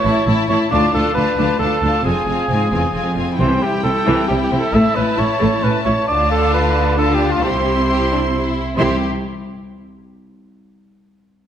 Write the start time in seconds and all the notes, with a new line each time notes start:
Already playing: C#5
0.04 A1 A2 E4 A5
0.26 A1 A2 E4 A5
0.49 A1 A2 E4 C#5 A5
0.71 D2 D4 F4 D5 A5
0.93 D2 D4 F4 A4 A5
1.14 D2 D4 F4 B4 A5
1.37 D2 D4 F4 A5
1.59 D2 D4 F4 A4 A5
1.82 D2 D4 F4 A5
2.04 F1 F2 C4 F4 G#4 G#5
2.26 F1 F2 C4 F4 G#5
2.49 F1 G#2 C4 F4 G#5
2.71 F1 E2 C4 F4 G#5
2.93 F1 F2 C4 F4 G#5
3.16 F1 C4 F4 G#5
3.39 C2 C3 E3 E4 C5 G5
3.61 C2 C3 G3 G4
3.83 C2 C3 C4 A4
4.06 C2 C3 E3
4.28 C2 C3 G3 G4
4.44 G4
4.51 C2 C3 C4
4.60 A4
4.74 A1 A2 A3 E5 A5
4.95 A1 A2 C#4 B4
5.17 A1 A2 E4 C#5
5.39 A1 A2 A3
5.62 A1 A2 C#4 B4
5.85 A1 A2 E4 C#5
6.08 D2 D3 D4 F4 D5 A5
6.31 A4
6.54 B4
6.98 D4 F4 A4 A5
7.15 G4
7.31 F4
7.43 C2 C3 E4 G4 C5 C6
7.89 G4
8.12 D4
8.36 E4
8.77 C2 C3 E4 G4 C5 C6